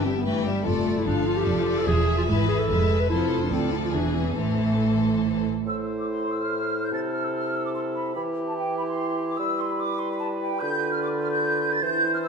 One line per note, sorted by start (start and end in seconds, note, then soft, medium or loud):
0.00 0.62 G1 soft
0.00 0.62 G2 soft
0.00 0.24 G4 soft
0.04 0.25 G3 soft
0.04 0.14 C4 medium
0.04 0.25 E5 soft
0.16 0.25 B3 medium
0.23 0.43 E3 soft
0.23 0.47 A3 medium
0.23 0.42 B4 soft
0.23 0.43 G5 soft
0.42 0.65 G3 soft
0.42 0.68 G3 medium
0.42 0.64 G4 soft
0.42 0.65 E5 soft
0.64 1.03 F1 medium
0.64 1.03 F2 medium
0.64 1.03 A3 soft
0.64 1.00 F4 medium
0.64 1.02 A4 medium
0.64 1.02 D5 soft
0.99 1.08 E4 medium
1.05 1.44 G1 medium
1.05 1.43 G2 medium
1.05 2.29 F3 medium
1.05 1.29 D4 medium
1.05 1.86 A4 medium
1.05 1.47 F5 soft
1.27 1.38 F4 medium
1.37 1.80 G4 medium
1.46 1.85 F1 medium
1.46 1.84 F2 medium
1.46 1.66 D5 medium
1.67 1.87 D5 medium
1.78 1.87 A4 medium
1.87 2.25 E1 medium
1.87 2.25 E2 medium
1.87 2.17 G#4 medium
1.87 2.28 G#4 medium
1.87 2.69 E5 medium
2.18 2.23 F4 medium
2.28 2.66 G#1 medium
2.28 2.66 G#2 medium
2.28 2.69 E3 soft
2.28 2.48 E4 medium
2.28 2.67 B4 medium
2.48 2.60 G#4 medium
2.59 3.02 A4 medium
2.69 3.08 F1 medium
2.69 3.08 F2 medium
2.69 3.11 G#3 soft
2.69 3.09 B4 soft
2.69 3.10 E5 soft
3.01 3.09 B4 medium
3.10 3.49 F1 medium
3.10 3.49 F2 medium
3.10 3.49 F3 medium
3.10 3.44 E4 medium
3.10 3.49 A4 medium
3.10 3.50 C5 soft
3.42 3.50 D4 soft
3.51 3.94 D2 soft
3.51 3.94 D2 medium
3.51 3.93 F3 soft
3.51 3.71 C4 medium
3.51 3.93 A4 medium
3.51 3.94 D5 soft
3.72 3.77 E4 medium
3.85 3.89 F4 soft
3.93 4.37 E1 soft
3.93 4.37 E2 soft
3.93 4.35 E3 soft
3.93 4.15 D4 medium
3.93 4.37 G#4 soft
3.93 4.37 B4 soft
4.16 4.28 C4 medium
4.27 4.38 B3 soft
4.36 5.44 A1 soft
4.36 5.44 A2 soft
4.36 5.44 E3 soft
4.36 5.24 A3 medium
4.36 5.46 A4 soft
4.36 5.45 C5 soft
5.66 6.87 A2 medium
5.66 8.12 E4 soft
5.66 6.87 C5 soft
5.66 5.74 E6 medium
5.99 6.09 D6 medium
6.10 6.30 C6 medium
6.31 6.41 E6 medium
6.41 6.82 F6 medium
6.84 6.93 G6 medium
6.92 8.14 C3 medium
6.92 8.14 A4 soft
6.92 6.99 A6 medium
7.11 7.22 F6 medium
7.23 7.34 E6 soft
7.34 7.54 F6 medium
7.55 7.65 E6 medium
7.65 7.70 D6 medium
7.74 7.80 C6 medium
7.94 8.13 B5 medium
8.15 9.37 E3 medium
8.15 10.57 E4 soft
8.15 9.36 G4 soft
8.15 8.22 B5 medium
8.46 8.57 A5 medium
8.56 8.77 G5 medium
8.78 8.83 B5 medium
8.87 9.28 C6 medium
9.29 9.39 D6 medium
9.37 10.59 G3 medium
9.37 11.79 B4 medium
9.37 9.58 E6 medium
9.59 9.70 C6 medium
9.70 9.80 B5 medium
9.79 10.00 D6 medium
9.98 10.10 C6 medium
10.11 10.15 B5 medium
10.20 10.26 A5 medium
10.40 10.60 G5 medium
10.60 11.81 D3 medium
10.60 11.81 F4 medium
10.60 10.91 G6 medium
10.91 11.01 F6 medium
11.02 11.08 D6 medium
11.21 11.31 F6 medium
11.31 11.71 G6 medium
11.72 11.83 A6 medium
11.81 12.28 E3 medium
11.81 12.28 E4 medium
11.81 12.28 C5 medium
11.81 12.13 G6 medium
12.14 12.18 F6 medium
12.22 12.28 E6 medium